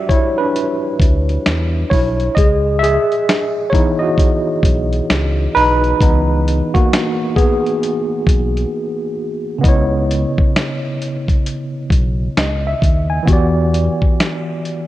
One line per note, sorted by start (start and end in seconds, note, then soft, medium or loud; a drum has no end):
0.00 2.33 G3 medium
0.00 0.39 D4 medium
0.00 2.39 F#4 medium
0.00 2.38 G4 medium
0.00 2.38 D5 loud
0.00 0.12 E5 loud
0.09 0.37 E4 medium
0.09 0.38 C#5 medium
0.09 kick medium
0.09 closed hi-hat medium
0.38 1.26 D4 medium
0.38 1.25 B4 medium
0.56 closed hi-hat medium
1.00 1.38 D2 medium
1.00 kick loud
1.00 closed hi-hat medium
1.29 closed hi-hat soft
1.46 1.84 E2 medium
1.46 snare loud
1.46 closed hi-hat medium
1.90 2.29 B1 medium
1.90 2.34 E4 medium
1.90 2.33 C#5 medium
1.90 kick loud
1.90 open hi-hat soft
2.20 closed hi-hat soft
2.35 2.98 C#2 loud
2.35 2.80 G#4 medium
2.35 2.83 D#5 loud
2.35 kick loud
2.35 closed hi-hat medium
2.79 3.70 G#4 medium
2.79 3.74 E5 loud
2.84 closed hi-hat medium
3.12 closed hi-hat soft
3.29 snare loud
3.29 closed hi-hat medium
3.70 6.00 E3 medium
3.70 6.01 B3 medium
3.70 4.01 C#5 medium
3.70 kick medium
3.74 5.55 D#4 medium
3.74 4.00 E4 medium
3.74 closed hi-hat medium
3.99 4.89 F#4 medium
3.99 4.87 D#5 medium
4.18 kick medium
4.18 closed hi-hat medium
4.63 5.01 B1 medium
4.63 kick loud
4.63 closed hi-hat medium
4.93 closed hi-hat soft
5.10 5.48 C#2 medium
5.10 snare loud
5.10 closed hi-hat medium
5.55 5.94 B1 medium
5.55 6.01 D#4 medium
5.55 6.78 B4 loud
5.55 open hi-hat soft
5.84 closed hi-hat soft
6.00 6.62 C#2 loud
6.00 6.66 E3 medium
6.00 6.66 B3 medium
6.00 6.66 D#4 medium
6.00 kick loud
6.00 closed hi-hat medium
6.48 closed hi-hat medium
6.74 7.34 A#3 medium
6.74 7.39 F#4 medium
6.74 kick medium
6.74 closed hi-hat soft
6.93 snare loud
6.93 closed hi-hat medium
7.36 9.15 B3 medium
7.36 9.14 G#4 loud
7.36 kick medium
7.36 closed hi-hat medium
7.67 closed hi-hat soft
7.83 closed hi-hat medium
8.27 8.65 B1 medium
8.27 kick loud
8.27 closed hi-hat medium
8.57 closed hi-hat soft
9.58 13.21 C#3 medium
9.58 13.22 B3 medium
9.63 10.25 C#2 loud
9.63 13.25 E4 medium
9.63 12.36 D#5 medium
9.63 kick loud
9.63 closed hi-hat medium
9.68 13.26 C#5 medium
10.11 closed hi-hat medium
10.38 kick loud
10.56 snare loud
10.56 closed hi-hat medium
11.02 closed hi-hat medium
11.28 kick medium
11.28 closed hi-hat soft
11.46 closed hi-hat medium
11.90 12.29 B1 medium
11.90 kick loud
11.90 closed hi-hat medium
12.37 12.75 C#2 medium
12.37 12.64 D#5 medium
12.37 snare loud
12.37 closed hi-hat medium
12.67 13.09 E5 medium
12.82 13.20 D#2 loud
12.82 kick medium
12.82 closed hi-hat medium
13.10 13.53 G#5 medium
13.23 14.87 E3 medium
13.23 14.87 B3 medium
13.28 13.89 E2 loud
13.28 14.87 F#4 medium
13.28 14.87 G4 medium
13.28 kick loud
13.28 closed hi-hat medium
13.33 14.87 D5 medium
13.74 closed hi-hat medium
14.02 kick medium
14.20 snare loud
14.20 closed hi-hat medium
14.65 closed hi-hat medium